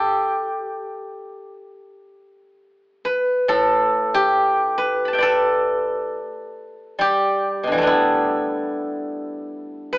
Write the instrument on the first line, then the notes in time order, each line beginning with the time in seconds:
guzheng
Already playing: G4 A4 B4
3.05 B4
3.48 A2 A4
4.14 G4
4.78 B4
5.05 A5 B5
5.13 E5 G5
5.18 B4 D5
5.22 A4
6.99 G3 G4
7.63 B2 D3
7.72 E3 G3
7.78 A3 B3
7.83 D4
7.87 E4
9.93 B4